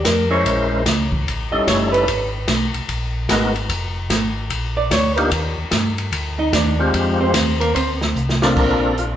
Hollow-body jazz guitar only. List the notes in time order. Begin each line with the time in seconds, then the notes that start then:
0.05 A#4
0.31 C#5
1.52 D#5
1.67 C#5
1.92 B4
4.77 D5
4.92 C#5
5.17 A#4
6.39 D#4 D#5
6.54 D4 D5
7.20 C4 C5
7.60 A#3 A#4
7.75 C4 C5